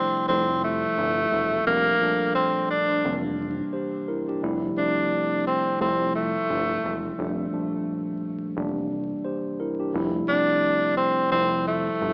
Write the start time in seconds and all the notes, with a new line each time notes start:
Already playing: C3 F3 G3 A3 C4 E4
0.28 F1 F2 C3 F3 G3 A3 C4 E4
0.64 A3
0.98 G1
1.32 E1
1.66 F1 F2 A#2 F3 G3 A3 A#3 D4
1.99 F2 A#2 F3 G3 D4 A4
2.35 C4
2.70 D4
3.04 F1 F2 C3 D#3 G3 A#3 D4
3.12 E3
3.73 G4 C5
4.08 E4 A#4
4.29 D4 G4
4.41 F1 C3 F3 G3 A3 E4
4.76 C3 F3 G3 A3 C4 D4
5.47 C4
5.80 F1 F2 C3 F3 G3 A3 C4 E4
6.15 A3
6.50 G1
6.84 E1
7.18 F1 F2 A#2 F3 G3 A3 D4
7.51 F2 A#2 F3 G3 A3 D4
8.56 F1 F2 C3 D#3 G3 A#3 D4
8.63 E3
9.25 G4 C5
9.60 E4 A#4
9.80 D4 G4
9.92 F1 C3 F3 G3 A3 E4
10.27 C3 F3 G3 A3 C4 D4
10.97 C4
11.31 F1 F2 C3 F3 G3 A3 C4 E4
11.68 A3
12.01 G1